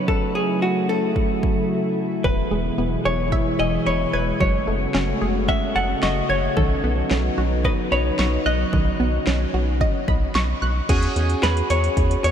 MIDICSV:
0, 0, Header, 1, 7, 480
1, 0, Start_track
1, 0, Tempo, 540541
1, 72, Time_signature, 4, 2, 24, 8
1, 10936, End_track
2, 0, Start_track
2, 0, Title_t, "Hollow-body jazz guitar"
2, 0, Program_c, 0, 26
2, 72, Note_on_c, 0, 69, 93
2, 308, Note_off_c, 0, 69, 0
2, 312, Note_on_c, 0, 68, 81
2, 548, Note_off_c, 0, 68, 0
2, 552, Note_on_c, 0, 66, 77
2, 775, Note_off_c, 0, 66, 0
2, 792, Note_on_c, 0, 69, 84
2, 1717, Note_off_c, 0, 69, 0
2, 1993, Note_on_c, 0, 71, 85
2, 2712, Note_on_c, 0, 73, 90
2, 2734, Note_off_c, 0, 71, 0
2, 3189, Note_off_c, 0, 73, 0
2, 3192, Note_on_c, 0, 75, 89
2, 3429, Note_off_c, 0, 75, 0
2, 3432, Note_on_c, 0, 73, 88
2, 3671, Note_on_c, 0, 71, 78
2, 3679, Note_off_c, 0, 73, 0
2, 3912, Note_on_c, 0, 73, 92
2, 3919, Note_off_c, 0, 71, 0
2, 4868, Note_off_c, 0, 73, 0
2, 4871, Note_on_c, 0, 76, 99
2, 5108, Note_off_c, 0, 76, 0
2, 5111, Note_on_c, 0, 78, 98
2, 5335, Note_off_c, 0, 78, 0
2, 5351, Note_on_c, 0, 75, 94
2, 5592, Note_on_c, 0, 73, 84
2, 5598, Note_off_c, 0, 75, 0
2, 5832, Note_on_c, 0, 69, 87
2, 5839, Note_off_c, 0, 73, 0
2, 6792, Note_on_c, 0, 71, 84
2, 6820, Note_off_c, 0, 69, 0
2, 6857, Note_off_c, 0, 71, 0
2, 7032, Note_on_c, 0, 73, 94
2, 7512, Note_on_c, 0, 75, 82
2, 7526, Note_off_c, 0, 73, 0
2, 9156, Note_off_c, 0, 75, 0
2, 10152, Note_on_c, 0, 71, 96
2, 10375, Note_off_c, 0, 71, 0
2, 10392, Note_on_c, 0, 73, 107
2, 10861, Note_off_c, 0, 73, 0
2, 10872, Note_on_c, 0, 73, 104
2, 10936, Note_off_c, 0, 73, 0
2, 10936, End_track
3, 0, Start_track
3, 0, Title_t, "Synth arpeggio sound"
3, 0, Program_c, 1, 84
3, 1992, Note_on_c, 1, 52, 84
3, 2174, Note_off_c, 1, 52, 0
3, 2231, Note_on_c, 1, 56, 79
3, 2413, Note_off_c, 1, 56, 0
3, 2471, Note_on_c, 1, 59, 85
3, 2653, Note_off_c, 1, 59, 0
3, 2711, Note_on_c, 1, 68, 81
3, 2893, Note_off_c, 1, 68, 0
3, 2951, Note_on_c, 1, 76, 96
3, 3133, Note_off_c, 1, 76, 0
3, 3191, Note_on_c, 1, 80, 87
3, 3373, Note_off_c, 1, 80, 0
3, 3431, Note_on_c, 1, 83, 94
3, 3613, Note_off_c, 1, 83, 0
3, 3671, Note_on_c, 1, 92, 94
3, 3853, Note_off_c, 1, 92, 0
3, 3911, Note_on_c, 1, 54, 86
3, 4093, Note_off_c, 1, 54, 0
3, 4151, Note_on_c, 1, 57, 77
3, 4333, Note_off_c, 1, 57, 0
3, 4391, Note_on_c, 1, 61, 86
3, 4573, Note_off_c, 1, 61, 0
3, 4631, Note_on_c, 1, 68, 84
3, 4814, Note_off_c, 1, 68, 0
3, 4871, Note_on_c, 1, 78, 91
3, 5054, Note_off_c, 1, 78, 0
3, 5111, Note_on_c, 1, 81, 88
3, 5294, Note_off_c, 1, 81, 0
3, 5351, Note_on_c, 1, 85, 97
3, 5533, Note_off_c, 1, 85, 0
3, 5591, Note_on_c, 1, 92, 95
3, 5774, Note_off_c, 1, 92, 0
3, 5832, Note_on_c, 1, 51, 88
3, 6014, Note_off_c, 1, 51, 0
3, 6071, Note_on_c, 1, 59, 80
3, 6253, Note_off_c, 1, 59, 0
3, 6311, Note_on_c, 1, 61, 87
3, 6493, Note_off_c, 1, 61, 0
3, 6552, Note_on_c, 1, 66, 84
3, 6734, Note_off_c, 1, 66, 0
3, 6791, Note_on_c, 1, 75, 96
3, 6973, Note_off_c, 1, 75, 0
3, 7031, Note_on_c, 1, 83, 90
3, 7214, Note_off_c, 1, 83, 0
3, 7271, Note_on_c, 1, 85, 97
3, 7454, Note_off_c, 1, 85, 0
3, 7511, Note_on_c, 1, 90, 95
3, 7694, Note_off_c, 1, 90, 0
3, 7751, Note_on_c, 1, 51, 87
3, 7933, Note_off_c, 1, 51, 0
3, 7991, Note_on_c, 1, 59, 79
3, 8174, Note_off_c, 1, 59, 0
3, 8232, Note_on_c, 1, 61, 85
3, 8414, Note_off_c, 1, 61, 0
3, 8472, Note_on_c, 1, 66, 81
3, 8654, Note_off_c, 1, 66, 0
3, 8711, Note_on_c, 1, 75, 97
3, 8893, Note_off_c, 1, 75, 0
3, 8951, Note_on_c, 1, 83, 91
3, 9133, Note_off_c, 1, 83, 0
3, 9191, Note_on_c, 1, 85, 99
3, 9374, Note_off_c, 1, 85, 0
3, 9431, Note_on_c, 1, 90, 90
3, 9614, Note_off_c, 1, 90, 0
3, 10936, End_track
4, 0, Start_track
4, 0, Title_t, "Synth keys"
4, 0, Program_c, 2, 88
4, 9672, Note_on_c, 2, 61, 77
4, 9672, Note_on_c, 2, 66, 70
4, 9672, Note_on_c, 2, 68, 86
4, 10936, Note_off_c, 2, 61, 0
4, 10936, Note_off_c, 2, 66, 0
4, 10936, Note_off_c, 2, 68, 0
4, 10936, End_track
5, 0, Start_track
5, 0, Title_t, "Analog synth pad"
5, 0, Program_c, 3, 89
5, 0, Note_on_c, 3, 49, 77
5, 72, Note_on_c, 3, 54, 71
5, 72, Note_on_c, 3, 57, 72
5, 72, Note_on_c, 3, 64, 89
5, 1956, Note_off_c, 3, 49, 0
5, 1973, Note_off_c, 3, 54, 0
5, 1973, Note_off_c, 3, 57, 0
5, 1992, Note_on_c, 3, 47, 80
5, 1992, Note_on_c, 3, 52, 74
5, 1992, Note_on_c, 3, 56, 73
5, 3877, Note_off_c, 3, 64, 0
5, 3893, Note_off_c, 3, 47, 0
5, 3893, Note_off_c, 3, 52, 0
5, 3911, Note_on_c, 3, 66, 90
5, 3912, Note_on_c, 3, 49, 81
5, 3912, Note_on_c, 3, 57, 71
5, 5796, Note_off_c, 3, 56, 0
5, 5812, Note_off_c, 3, 57, 0
5, 5812, Note_off_c, 3, 66, 0
5, 5831, Note_on_c, 3, 54, 74
5, 5832, Note_on_c, 3, 59, 71
5, 5832, Note_on_c, 3, 63, 89
5, 7732, Note_off_c, 3, 59, 0
5, 7751, Note_on_c, 3, 61, 74
5, 9636, Note_off_c, 3, 49, 0
5, 9636, Note_off_c, 3, 54, 0
5, 9636, Note_off_c, 3, 63, 0
5, 9652, Note_off_c, 3, 61, 0
5, 10936, End_track
6, 0, Start_track
6, 0, Title_t, "Analog synth bass"
6, 0, Program_c, 4, 38
6, 1992, Note_on_c, 4, 28, 101
6, 2160, Note_off_c, 4, 28, 0
6, 2231, Note_on_c, 4, 28, 90
6, 2399, Note_off_c, 4, 28, 0
6, 2471, Note_on_c, 4, 28, 88
6, 2639, Note_off_c, 4, 28, 0
6, 2711, Note_on_c, 4, 28, 97
6, 2964, Note_off_c, 4, 28, 0
6, 3191, Note_on_c, 4, 28, 102
6, 3359, Note_off_c, 4, 28, 0
6, 3431, Note_on_c, 4, 28, 95
6, 3600, Note_off_c, 4, 28, 0
6, 3671, Note_on_c, 4, 28, 100
6, 3839, Note_off_c, 4, 28, 0
6, 3911, Note_on_c, 4, 30, 109
6, 4079, Note_off_c, 4, 30, 0
6, 4151, Note_on_c, 4, 30, 92
6, 4319, Note_off_c, 4, 30, 0
6, 4391, Note_on_c, 4, 30, 98
6, 4560, Note_off_c, 4, 30, 0
6, 4631, Note_on_c, 4, 30, 95
6, 4883, Note_off_c, 4, 30, 0
6, 5112, Note_on_c, 4, 30, 94
6, 5280, Note_off_c, 4, 30, 0
6, 5351, Note_on_c, 4, 30, 98
6, 5520, Note_off_c, 4, 30, 0
6, 5591, Note_on_c, 4, 30, 103
6, 5759, Note_off_c, 4, 30, 0
6, 5831, Note_on_c, 4, 35, 105
6, 6000, Note_off_c, 4, 35, 0
6, 6071, Note_on_c, 4, 35, 95
6, 6239, Note_off_c, 4, 35, 0
6, 6311, Note_on_c, 4, 35, 104
6, 6479, Note_off_c, 4, 35, 0
6, 6551, Note_on_c, 4, 35, 93
6, 6803, Note_off_c, 4, 35, 0
6, 7032, Note_on_c, 4, 35, 99
6, 7200, Note_off_c, 4, 35, 0
6, 7271, Note_on_c, 4, 35, 99
6, 7440, Note_off_c, 4, 35, 0
6, 7511, Note_on_c, 4, 35, 113
6, 7679, Note_off_c, 4, 35, 0
6, 7752, Note_on_c, 4, 35, 102
6, 7920, Note_off_c, 4, 35, 0
6, 7991, Note_on_c, 4, 35, 91
6, 8159, Note_off_c, 4, 35, 0
6, 8231, Note_on_c, 4, 35, 101
6, 8399, Note_off_c, 4, 35, 0
6, 8472, Note_on_c, 4, 35, 107
6, 8724, Note_off_c, 4, 35, 0
6, 8951, Note_on_c, 4, 35, 91
6, 9119, Note_off_c, 4, 35, 0
6, 9191, Note_on_c, 4, 35, 100
6, 9359, Note_off_c, 4, 35, 0
6, 9432, Note_on_c, 4, 35, 94
6, 9600, Note_off_c, 4, 35, 0
6, 9672, Note_on_c, 4, 40, 101
6, 9840, Note_off_c, 4, 40, 0
6, 9911, Note_on_c, 4, 40, 94
6, 10079, Note_off_c, 4, 40, 0
6, 10151, Note_on_c, 4, 40, 104
6, 10319, Note_off_c, 4, 40, 0
6, 10392, Note_on_c, 4, 40, 105
6, 10560, Note_off_c, 4, 40, 0
6, 10629, Note_on_c, 4, 40, 105
6, 10798, Note_off_c, 4, 40, 0
6, 10872, Note_on_c, 4, 40, 111
6, 10936, Note_off_c, 4, 40, 0
6, 10936, End_track
7, 0, Start_track
7, 0, Title_t, "Drums"
7, 71, Note_on_c, 9, 36, 98
7, 160, Note_off_c, 9, 36, 0
7, 1029, Note_on_c, 9, 36, 81
7, 1118, Note_off_c, 9, 36, 0
7, 1271, Note_on_c, 9, 36, 91
7, 1360, Note_off_c, 9, 36, 0
7, 1992, Note_on_c, 9, 36, 96
7, 2080, Note_off_c, 9, 36, 0
7, 2949, Note_on_c, 9, 36, 81
7, 3038, Note_off_c, 9, 36, 0
7, 3911, Note_on_c, 9, 36, 98
7, 4000, Note_off_c, 9, 36, 0
7, 4391, Note_on_c, 9, 38, 98
7, 4480, Note_off_c, 9, 38, 0
7, 4869, Note_on_c, 9, 36, 81
7, 4958, Note_off_c, 9, 36, 0
7, 5354, Note_on_c, 9, 38, 109
7, 5443, Note_off_c, 9, 38, 0
7, 5831, Note_on_c, 9, 36, 102
7, 5920, Note_off_c, 9, 36, 0
7, 6311, Note_on_c, 9, 38, 101
7, 6400, Note_off_c, 9, 38, 0
7, 6789, Note_on_c, 9, 36, 81
7, 6878, Note_off_c, 9, 36, 0
7, 7274, Note_on_c, 9, 38, 114
7, 7362, Note_off_c, 9, 38, 0
7, 7751, Note_on_c, 9, 36, 98
7, 7840, Note_off_c, 9, 36, 0
7, 8231, Note_on_c, 9, 38, 101
7, 8320, Note_off_c, 9, 38, 0
7, 8709, Note_on_c, 9, 36, 83
7, 8798, Note_off_c, 9, 36, 0
7, 8951, Note_on_c, 9, 36, 92
7, 9040, Note_off_c, 9, 36, 0
7, 9194, Note_on_c, 9, 38, 114
7, 9283, Note_off_c, 9, 38, 0
7, 9672, Note_on_c, 9, 36, 105
7, 9672, Note_on_c, 9, 42, 80
7, 9672, Note_on_c, 9, 49, 96
7, 9761, Note_off_c, 9, 36, 0
7, 9761, Note_off_c, 9, 42, 0
7, 9761, Note_off_c, 9, 49, 0
7, 9791, Note_on_c, 9, 42, 55
7, 9879, Note_off_c, 9, 42, 0
7, 9911, Note_on_c, 9, 42, 71
7, 10000, Note_off_c, 9, 42, 0
7, 10031, Note_on_c, 9, 42, 54
7, 10120, Note_off_c, 9, 42, 0
7, 10152, Note_on_c, 9, 38, 104
7, 10155, Note_on_c, 9, 42, 71
7, 10241, Note_off_c, 9, 38, 0
7, 10244, Note_off_c, 9, 42, 0
7, 10273, Note_on_c, 9, 42, 55
7, 10362, Note_off_c, 9, 42, 0
7, 10390, Note_on_c, 9, 42, 76
7, 10479, Note_off_c, 9, 42, 0
7, 10512, Note_on_c, 9, 42, 57
7, 10601, Note_off_c, 9, 42, 0
7, 10629, Note_on_c, 9, 36, 85
7, 10629, Note_on_c, 9, 42, 65
7, 10718, Note_off_c, 9, 36, 0
7, 10718, Note_off_c, 9, 42, 0
7, 10753, Note_on_c, 9, 42, 56
7, 10842, Note_off_c, 9, 42, 0
7, 10872, Note_on_c, 9, 42, 77
7, 10936, Note_off_c, 9, 42, 0
7, 10936, End_track
0, 0, End_of_file